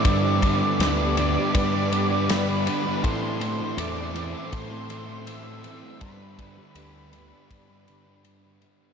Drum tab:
RD |xxxxxxxx|xxxxxxxx|xxxxxxxx|
SD |--o---o-|--------|--------|
BD |oo--o---|o---o---|oo--o---|